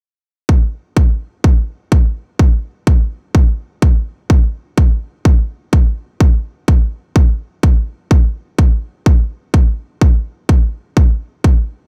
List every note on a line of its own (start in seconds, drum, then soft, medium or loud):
0.49 kick loud
0.97 kick loud
1.44 kick loud
1.92 kick loud
2.39 kick loud
2.87 kick loud
3.35 kick loud
3.82 kick loud
4.30 kick loud
4.78 kick loud
5.25 kick loud
5.73 kick loud
6.20 kick loud
6.68 kick loud
7.16 kick loud
7.63 kick loud
8.11 kick loud
8.59 kick loud
9.06 kick loud
9.54 kick loud
10.01 kick loud
10.49 kick loud
10.97 kick loud
11.44 kick loud